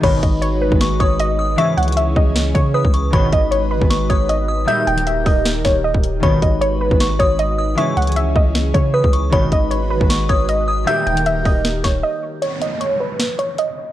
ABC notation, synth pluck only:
X:1
M:4/4
L:1/8
Q:1/4=155
K:G#m
V:1 name="Synth pluck"
c d c B2 c d2 | e f e d2 c B2 | c d c B2 c d2 | e =g e d2 c d z |
c d c B2 c d2 | e f e d2 c B2 | c d c B2 c d2 | e =g e d2 c d z |
c d c B2 c d2 |]